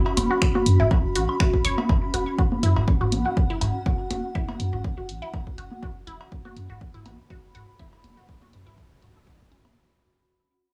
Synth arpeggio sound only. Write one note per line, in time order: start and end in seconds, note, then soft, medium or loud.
0.31 0.33 F#4 medium
0.55 0.57 F#4 medium
0.80 0.83 E4 loud
1.16 1.18 F#4 medium
1.40 1.45 F#4 medium
1.65 1.67 C#5 loud
2.14 2.16 F#4 medium
2.38 2.41 F#4 medium
2.63 2.67 E4 loud
3.01 3.03 F#4 medium
3.25 3.27 F#4 medium
3.50 3.53 E4 loud
3.86 3.88 F#4 medium
4.11 4.13 F#4 medium
4.35 4.39 E4 loud
4.73 4.75 F#4 medium
4.98 5.00 F#4 medium
5.22 5.25 E4 loud
5.58 5.60 F#4 medium
5.83 5.85 F#4 medium
6.07 6.11 E4 medium
6.45 6.47 F#4 medium
6.70 6.72 F#4 medium
6.94 6.97 E4 loud
7.30 7.32 F#4 medium
7.55 7.57 F#4 medium
7.79 7.83 E4 loud
8.17 8.19 F#4 medium
8.42 8.44 F#4 medium
8.67 8.69 E4 medium
9.02 9.06 F#4 medium
9.16 9.19 A4 medium
9.27 9.30 F#4 medium
9.51 9.55 C#4 medium